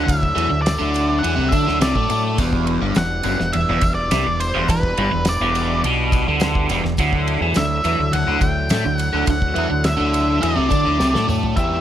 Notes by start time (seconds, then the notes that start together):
Already playing: F#3 A3 D4 E4
0.04 D3 E5
0.08 D2, kick, ride, tambourine
0.23 kick
0.36 E2 E3, ride, tambourine
0.50 D2 D3
0.62 D5
0.66 snare, ride, tambourine
0.79 D2 D3
0.94 ride, tambourine
1.19 F#5
1.24 E2 E3, ride, tambourine
1.36 C2 C3
1.49 E5, kick, tambourine
1.53 D3 D4, ride
1.67 D2 D3, snare
1.81 C2 C3 D5, snare, ride, tambourine
1.95 A2 A3, kick
2.10 A2 A3, ride, tambourine
2.38 E1 E2 G3 B3, kick, ride, tambourine
2.53 kick
2.67 ride
2.82 G1 G2
2.95 E1 E2 F#5, snare, ride, tambourine
3.23 F#1 F#2, ride, tambourine
3.40 E1 E2, snare
3.53 E1 E2 E5, ride
3.69 E1 E2
3.81 E1 E2, kick, ride, tambourine
3.95 D5
4.11 C2 C3, snare, ride, tambourine
4.26 E1 E2
4.40 C5, ride, tambourine
4.55 E1 E2
4.68 E1 E2 B4, kick, ride, tambourine
4.83 kick
4.97 G1 G2, ride
5.11 E1 E2
5.25 D5, snare, ride, tambourine
5.41 E1 E2
5.55 ride, tambourine
5.83 B1 B2, ride
6.12 kick, ride, tambourine
6.28 D2 D3
6.40 snare, ride, tambourine
6.55 kick
6.69 E1 E2, ride, tambourine
6.84 E1 E2, snare
6.97 D2 D3 F#3 A3 D4 E4, kick, ride, tambourine
7.13 kick
7.28 ride
7.41 E2 E3
7.54 D2 D3 E5, snare, ride, tambourine
7.84 E2 E3, ride, tambourine
8.00 D2 D3
8.13 D2 D3 F#5, ride
8.27 D2 D3
8.41 D2 D3 G5, kick, ride, tambourine
8.69 A2 A3, snare, ride, tambourine
8.84 D2 D3
8.97 F#5, ride, tambourine
9.13 D2 D3
9.26 D2 D3, kick, ride, tambourine
9.30 F#5
9.42 kick
9.55 E2 E3, ride, tambourine
9.70 D2 D3
9.84 E5, snare, ride, tambourine
9.97 D2 D3
10.13 ride, tambourine
10.42 E2 E3 D5, ride, tambourine
10.56 C2 C3
10.69 D3 D4, kick, ride, tambourine
10.84 D2 D3
10.99 C2 C3, snare, tambourine
11.13 A2 A3, snare
11.27 A2 A3, mid tom, tambourine
11.43 floor tom
11.56 E2 E3 B3 E4 G4 D5 E5 B5, kick, closed hi-hat, tambourine